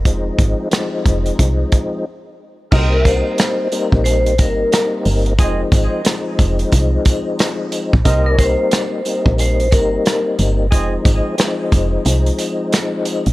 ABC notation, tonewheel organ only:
X:1
M:4/4
L:1/16
Q:"Swing 16ths" 1/4=90
K:Cm
V:1 name="Tonewheel organ"
[F,A,CE]4 [F,A,]8 z4 | [G,B,CE]2 [G,B,CE]4 [G,B,CE]4 [G,B,CE]6 | [F,A,CE]4 [F,A,CE]8- [F,A,CE]3 z | [G,B,CE]2 [G,B,CE]4 [G,B,CE]4 [G,B,CE]6 |
[F,A,CE]4 [F,A,CE]8- [F,A,CE]3 z |]